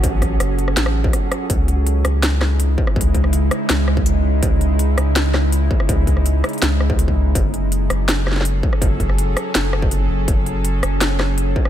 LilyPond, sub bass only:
\new Staff \with { instrumentName = "Sub bass" } { \clef bass \time 4/4 \key cis \minor \tempo 4 = 164 a,,4 fis,,4 a,,4 r4 | cis,4. cis,2 r8 | cis,4. r8 cis,4. cis,8 | cis,4. cis,2 r8 |
cis,4. r8 cis,2 | fis,,4. fis,,2 r8 | fis,,4. r8 fis,,4. fis,,8 | fis,,4. fis,,2 r8 | }